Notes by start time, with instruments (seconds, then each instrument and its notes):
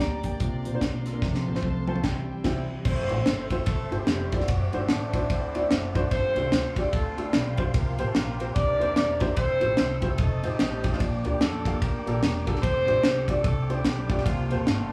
Already playing: upright piano D3, tonewheel organ D3 G3 A#3 G4, string section D5 G5 A#5 D6
0.00 upright bass D2, upright piano D5 A#5, kick, snare, closed hi-hat
0.23 upright piano A#4 G5, kick, closed hi-hat
0.40 upright bass C2, upright piano C3, tonewheel organ C4 F4, string section F5 A#5 C6, kick, closed hi-hat
0.65 upright bass A#1, upright piano F4 C5, closed hi-hat
0.73 upright piano A#3 D4 F4 C5
0.81 upright bass B1, kick, snare, closed hi-hat
1.05 upright piano F4 A4, snare, closed hi-hat
1.13 upright piano A#3 D4 F4 A#4
1.22 upright bass C2, upright piano C3, tonewheel organ F3 A3 C4 A4, string section C5 F5 A5, kick, snare
1.34 snare
1.46 upright bass A1, upright piano F4 C5
1.54 upright piano A3 C4 F4 C5, snare
1.62 upright bass C2, kick, high tom
1.87 upright piano A3 C4 F4 C5, clean electric guitar F4 A4, high tom
1.96 mid tom
2.04 upright bass C2, tonewheel organ E3 G3 C4 G4, clean electric guitar E4 G4, string section E5 G5, kick, snare, crash
2.44 upright bass C2, upright piano G3 C4 E4 G4, clean electric guitar C4 E4, kick, snare, crash
2.85 upright bass F1, horn section C4 E4 A4 C5, tonewheel organ A4 C5 E5 C6, kick, crash
3.09 upright bass A1, upright piano A3 C4 E4 F4 C5, ride
3.26 upright bass G1, snare, ride
3.50 upright piano A3 C4 E4 F4 C5, kick, ride
3.66 upright bass F1, horn section A3 C4 E4 A4, kick, ride
3.91 upright bass G1, upright piano A3 C4 E4 F4 C5, ride
3.99 horn section G3 C4 E4 G4
4.07 upright bass F1, snare, ride
4.32 upright piano A3 C4 E4 F4 D5, kick, ride
4.39 horn section F#3 A3 C4 F#4, snare
4.48 upright bass F#1, tonewheel organ C5 F#5 D6, kick, ride
4.72 upright bass G1, upright piano A3 D4 E4 F#4 C5, ride
4.80 horn section G3 G4
4.88 upright bass A1, horn section A3 C4 D4 A4, snare, ride
5.13 upright piano A3 D4 E4 F#4 C5, kick, ride
5.29 upright bass D2, horn section C4 E4 A4 C5, kick, ride
5.55 upright piano A3 D4 E4 F#4 D5, ride
5.71 upright bass F#1, snare, ride
5.94 upright piano A3 D4 E4 F#4 C5, kick, ride
6.10 upright bass G1, upright piano G2, horn section C4 F4 A4 C5, tonewheel organ A4 F5 G5 C6, kick, ride
6.35 upright bass C2, upright piano A3 D4 F4 G4 C5, ride
6.52 upright bass D2, snare, ride
6.76 upright piano A3 D4 F4 G4 D5, kick, ride
6.92 upright bass D2, horn section A3 C4 F4 A4, kick, ride
7.17 upright piano A3 D4 F4 G4 A4, ride
7.25 horn section G3 C4 D4 G4
7.33 upright bass B1, snare, ride
7.57 upright piano A3 D4 F4 G4 C5, kick, ride
7.65 horn section F3 A#3 F4
7.74 upright bass C2, upright piano C3, tonewheel organ A#4 G5, kick, ride
7.98 upright bass A1, upright piano A#3 C4 F4 G4 C5, ride
8.07 horn section A3 A4
8.15 upright bass A#1, horn section A#3 F4 G4 A#4, snare, ride
8.40 upright piano A#3 C4 F4 G4 C5, ride
8.54 upright bass C2, upright piano C3, horn section D4 G4 A#4 D5, tonewheel organ C5 E5 A#5 D6, kick, ride
8.79 upright bass E2, upright piano A#3 D4 E4 G4 C5, ride
8.96 upright bass E1, snare, ride
9.20 upright piano A#3 D4 E4 G4 C5, kick, snare, ride
9.35 upright bass F1, horn section C4 E4 A4 C5, tonewheel organ A4 G5 E6, kick, ride
9.61 upright bass A1, upright piano A3 E4 F4 G4 C5, ride
9.77 upright bass C2, snare, ride
10.01 upright piano A3 E4 F4 G4 C5, kick, ride
10.18 upright bass F1, horn section A3 C4 D#4 A4, tonewheel organ C5 A5 D#6, kick, ride
10.43 upright bass A1, upright piano A3 C4 D#4 F4 C5, ride
10.50 horn section G3 C4 D#4 G4
10.59 upright bass A1, snare, ride
10.84 upright piano A3 C4 D#4 F4 G4, kick, snare, ride
10.91 horn section F3 D4 F4, snare
11.00 upright bass A#1, upright piano A#2, tonewheel organ A#3 G5 D6, kick, ride
11.25 upright bass D2, upright piano A#3 D4 F4 G4 D5, ride
11.31 horn section G3 G4
11.40 upright bass F2, horn section A3 D4 F4 A4, snare, ride
11.65 upright piano A#3 D4 F4 G4 F5, kick, ride
11.80 upright bass D2, horn section A#3 D4 G4 A#4, kick, ride
12.06 upright bass A#1, upright piano A#3 D4 F4 G4 A4, ride
12.23 upright bass E1, snare, ride
12.46 upright piano A#3 D4 F4 G4 A4, kick, ride
12.56 snare
12.63 upright bass F1, horn section C4 G4 A4 C5, tonewheel organ A4, kick, ride
12.86 upright bass A1, upright piano A3 D4 F4 G4 C5, ride
13.03 upright bass C2, snare, ride
13.28 upright piano A3 D4 F4 G4 D5, kick, ride
13.43 upright bass C2, horn section A3 C4 D4 A4, kick, ride
13.69 upright piano A3 D4 F4 G4 C5, ride
13.75 horn section G3 C4 D4 G4
13.85 upright bass B1, snare, ride
14.09 upright piano A3 D4 F4 G4 D5, kick, ride
14.18 snare
14.24 upright bass C2, upright piano C3, horn section F3 A#3 F4, tonewheel organ A#3 G5 C6, kick, ride
14.47 upright bass F1, horn section A3 F4 A4, upright piano A#3 C4 F4, ride
14.52 upright piano G4 C5
14.67 upright bass G1, snare, ride